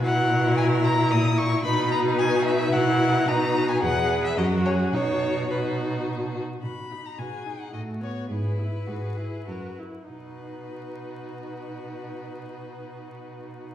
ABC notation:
X:1
M:3/4
L:1/16
Q:1/4=106
K:B
V:1 name="Violin"
f4 g2 a2 d'2 c'2 | b2 a2 g2 e2 f4 | a3 g f3 e d2 c2 | c4 B4 z4 |
z4 G4 F4 | E4 F2 G2 A2 z2 | F12- | F12 |]
V:2 name="Violin"
A12 | B8 A4 | B4 B4 A2 G2 | F4 F6 z2 |
b3 a g3 f d2 c2 | B8- B2 z2 | B12- | B12 |]
V:3 name="Viola"
E12 | D8 E4 | D4 G4 F4 | D4 D6 z2 |
F2 D2 F2 D2 =A,2 B,2 | G2 E2 G2 E2 F2 E2 | D12- | D12 |]
V:4 name="Cello" clef=bass
B,,8 A,,4 | B,,8 B,,4 | B,,4 E,,4 F,,4 | B,,8- B,,2 z2 |
B,,4 B,,4 =A,,4 | G,,4 G,,4 F,,4 | B,,12- | B,,12 |]